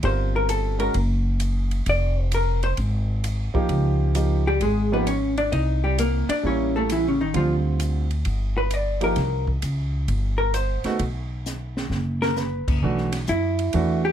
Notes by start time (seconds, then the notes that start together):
0.03 G1 G3 C4 F4 A#4 C5, kick, ride
0.36 A#4
0.49 A4, hi-hat pedal, ride
0.79 G#3 C#4 F#4 A#4, ride
0.94 F#1, kick, ride
1.40 hi-hat pedal, ride
1.71 ride
1.86 F1 D5, kick, ride
2.19 C5
2.32 A#4, hi-hat pedal, ride
2.63 C5, ride
2.77 G#1, kick, ride
3.24 hi-hat pedal, ride
3.54 F3 A#3 D#4 G4, muted upright bass stroke, kick
3.69 C#2, kick, ride
4.15 F3 A#3 D#4 G4, hi-hat pedal, ride
4.47 G3 G4
4.60 G#1 G#3 G#4, kick, ride
4.92 F3 A#3 B3 D#4 G4 B4
5.07 C#4 C#5, hi-hat pedal, ride
5.37 D4 D5, ride
5.52 C2 D#4 D#5, kick, ride
5.84 G3 G4
5.98 A#3 A#4, hi-hat pedal, ride
6.29 D4 D5, muted upright bass stroke, ride
6.43 A1 G3 A#3 C#4 E4 C#5, kick
6.76 A3 A4
6.89 E3 E4, hi-hat pedal, ride
7.08 C#3 C#4
7.21 D#3 D#4
7.34 D2 D3 F3 G3 C4 F4, kick, ride
7.80 hi-hat pedal, ride
8.11 ride
8.25 G1, kick, ride
8.58 B4
8.71 D5, hi-hat pedal, ride
9.01 F3 A#3 D#4 G4 A#4, ride
9.16 C2, kick, snare, ride
9.47 kick
9.62 C#2, hi-hat pedal, ride
10.08 G1, kick, ride
10.38 A#4
10.54 C5, hi-hat pedal, ride
10.84 A3 B3 D#4 F#4, muted upright bass stroke, snare, ride
10.99 B1, kick, ride
11.46 snare, hi-hat pedal
11.77 snare
11.90 F#1, snare
12.22 A#4, snare
12.36 B4, snare, hi-hat pedal
12.68 F#1, kick, crash
12.83 B1 E3 A3 D4 F#4, kick
12.98 snare
13.12 snare, ride
13.27 F#2 E4, kick, hi-hat pedal
13.59 ride
13.73 E2 E3 A3 D4 F#4, kick, ride
14.05 G4